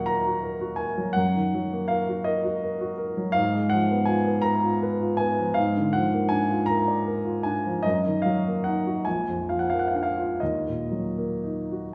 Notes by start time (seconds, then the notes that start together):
Already playing: D#2 A#2 F#3 A#3 F#4 A#4 D#5 F5 F#5
0.06 A#4 A#5
0.27 F#4
0.44 A#4
0.61 F#4
0.76 A#4 G#5
0.98 F#3
1.13 F#2 F#5
1.35 D#3
1.54 F#3
1.72 A#3
1.88 A#4 F5
2.09 F#4
2.24 A#4 D#5
2.44 F#4
2.63 A#4
2.81 F#4
2.98 A#4
3.17 F#3
3.32 G#2 F5
3.54 G#3
3.70 F3 F#5
3.91 B3
4.05 F4 G#5
4.27 B3
4.42 B4 A#5
4.63 F4
4.83 B4
5.01 F4
5.17 B3 G#5
5.39 F3
5.54 G#2 F5
5.77 D3
5.93 F3 F#5
6.13 A#3
6.29 D4 G#5
6.50 F4
6.66 A#4 A#5
6.88 D5
7.06 A#4
7.25 F4
7.43 D4 G#5
7.66 F3
7.83 F#2 D#5
8.06 D#3
8.22 F#3 F5
8.47 A#3
8.64 D#4 F#5
8.86 F#4
9.05 A#1 G#5
9.29 F2
9.49 F3 F5
9.59 F#5
9.70 A#3 F5
9.79 F#5
9.88 F5
9.95 D4 F#5
10.03 F5
10.17 F4
10.40 D#2 D#5
10.68 A#2
10.91 F#3
11.18 A#3
11.44 D#4
11.72 F#4